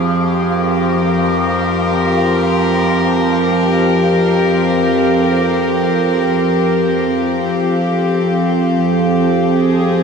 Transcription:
Already playing: F2 F3 C4 G4 G#4 F5
0.53 A#4
5.21 F2 F3
9.54 G#4

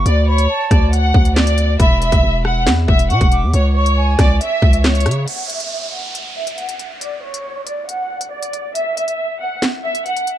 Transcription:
0.06 D2 D5, closed hi-hat
0.27 C#5 B5
0.38 closed hi-hat
0.49 A5
0.71 D2 D5, kick, cross-stick, closed hi-hat
0.93 F#5, closed hi-hat
1.14 D2, kick
1.25 closed hi-hat
1.36 D5, snare, clap
1.47 closed hi-hat
1.58 closed hi-hat
1.80 E1 E5 B5, kick, closed hi-hat
2.01 E5, closed hi-hat
2.12 E1, kick, closed hi-hat
2.23 E1
2.45 F#5, cross-stick
2.67 E2, snare, clap, closed hi-hat
2.88 E1 E5, kick
2.99 closed hi-hat
3.10 B2 F#5 C#6, closed hi-hat
3.21 E1, kick, closed hi-hat
3.32 D6, closed hi-hat
3.43 E2
3.54 C#2 C#5, closed hi-hat
3.75 C#5 C#6
3.86 closed hi-hat
3.97 G#5
4.19 C#2 D5, kick, cross-stick, snare, closed hi-hat
4.41 E5, closed hi-hat
4.62 C#2, kick
4.73 closed hi-hat
4.84 C#5, snare, clap
4.95 closed hi-hat
5.00 closed hi-hat
5.06 C#3, cross-stick, closed hi-hat
5.11 closed hi-hat
5.28 F#5, closed hi-hat, downlifter
5.49 E5, closed hi-hat
5.60 closed hi-hat
5.93 F#5
6.15 closed hi-hat
6.36 E5
6.47 closed hi-hat
6.58 F#5, closed hi-hat
6.69 closed hi-hat
6.79 closed hi-hat
7.01 D5, closed hi-hat
7.23 C#5
7.34 closed hi-hat
7.67 D5, closed hi-hat
7.88 F#5, closed hi-hat
8.21 closed hi-hat
8.32 D5
8.43 closed hi-hat
8.53 closed hi-hat
8.75 E5, closed hi-hat
8.97 E5, closed hi-hat
9.08 closed hi-hat
9.40 F#5
9.62 snare, clap, closed hi-hat
9.84 E5
9.95 closed hi-hat
10.06 F#5, closed hi-hat
10.17 closed hi-hat
10.27 closed hi-hat

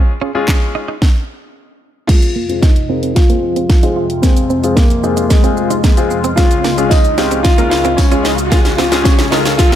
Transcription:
Already playing: G#3 C#4 F4 G#4
0.21 C#4 F4 G#4
0.35 G#3 C#4 F4 G#4, muted clean electric guitar stroke
0.48 muted clean electric guitar stroke, kick, snare, clap
0.75 D#4
0.88 D#4
1.02 kick, snare
2.07 F2 C3 G#3 C4 F4 G#4, kick, snare, closed hi-hat, crash, riser
2.22 closed hi-hat
2.36 A#3
2.49 G#3 C4 F4 G#4, muted clean electric guitar stroke, closed hi-hat
2.61 D#4, muted clean electric guitar stroke, kick, snare, closed hi-hat
2.76 closed hi-hat
2.89 G#3 C4 F4 A#4
3.03 C4, closed hi-hat
3.15 F4, kick, snare, closed hi-hat
3.29 G#3 A#3 C4 F4 G#4, closed hi-hat
3.43 muted clean electric guitar stroke
3.56 C4, closed hi-hat
3.70 muted clean electric guitar stroke, kick, snare, closed hi-hat
3.83 G#3 C4 D#4 F4 G#4, closed hi-hat
3.96 F4
4.10 closed hi-hat
4.22 G#3 A#3 C4 F4 G#4, kick, snare, closed hi-hat, shaker
4.37 closed hi-hat, shaker
4.50 C4, shaker
4.63 G#3 C4 F4 G#4, muted clean electric guitar stroke, closed hi-hat, shaker
4.75 A#3, muted clean electric guitar stroke, kick, snare, closed hi-hat, shaker
4.90 closed hi-hat, shaker
5.03 G#3 C4 D#4 F4 G#4, shaker
5.17 D#4, closed hi-hat, shaker
5.29 G#3, kick, snare, closed hi-hat, shaker
5.43 G#3 C4 F4 G#4, closed hi-hat, shaker
5.57 muted clean electric guitar stroke, shaker
5.70 D#4, closed hi-hat, shaker
5.84 A#3, kick, snare, closed hi-hat, shaker
5.97 G#3 C4 F4 G#4, closed hi-hat, shaker
6.10 muted clean electric guitar stroke, shaker
6.24 C4, closed hi-hat, shaker
6.36 C#2 C#3 G#3 C#4 F4 G#4, kick, snare, closed hi-hat, shaker
6.51 closed hi-hat, shaker
6.64 A#3, snare, open hi-hat, shaker
6.78 G#3 C#4 F4 G#4, muted clean electric guitar stroke, closed hi-hat, shaker
6.89 D#4, muted clean electric guitar stroke, kick, snare, closed hi-hat, tambourine, shaker
7.04 closed hi-hat, shaker
7.18 G#3 C4 C#4 F4 G4, snare, open hi-hat, shaker
7.31 C4, closed hi-hat, shaker
7.43 F4, kick, snare, closed hi-hat, shaker
7.58 G#3 A#3 C#4 F4 A#4, closed hi-hat, shaker
7.70 F4, muted clean electric guitar stroke, snare, open hi-hat, shaker
7.85 C4, closed hi-hat, shaker
7.97 C#4, muted clean electric guitar stroke, kick, snare, closed hi-hat, tambourine, shaker
8.11 G#3 C#4 F4 G#4, closed hi-hat, shaker
8.23 D#4, snare, open hi-hat, shaker
8.38 closed hi-hat, shaker
8.50 G#3 A#3 C#4 F4 G#4, kick, snare, closed hi-hat, shaker
8.65 snare, closed hi-hat, shaker
8.77 C4 F4, snare, open hi-hat, shaker
8.92 G#3 C#4 F4 G#4, muted clean electric guitar stroke, snare, closed hi-hat, shaker
9.03 C#4, muted clean electric guitar stroke, kick, snare, closed hi-hat, tambourine, shaker
9.19 snare, closed hi-hat, shaker
9.30 G#3 C#4 D#4 F4 A#4, snare, open hi-hat, shaker
9.45 C#4, snare, closed hi-hat, shaker
9.57 F4, kick, snare, closed hi-hat, shaker
9.72 G#3 C#4 F4, snare

